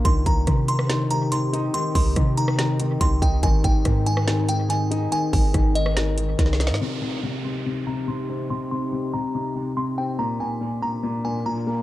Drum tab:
HH |x-----x-----x-----x-----x-----x-----x-----x-----|x-----o-----x-----x-----x-----x-----x-----x-----|x-----x-----x-----x-----x-----x-----x-----x-----|x-----o-----x-----x-----x-----x-----x-----x-----|
SD |------------r--------r--o-----------------------|------------r--------r--o-----------------------|------------r--------r--o-----------------------|------------r--------r--o-----------o-o-o-o-o-o-|
BD |o-----o-----o-----------------------------------|------o-----o-----------------------o-----o-----|o-----o-----o-----------------------------------|------o-----o-----------------------o-----------|

HH |------------------------------------------------|------------------------------------------------|------------------------------------------------|
SD |------------------------------------------------|------------------------------------------------|------------------------------------------------|
BD |------------------------------------------------|------------------------------------------------|------------------------------------------------|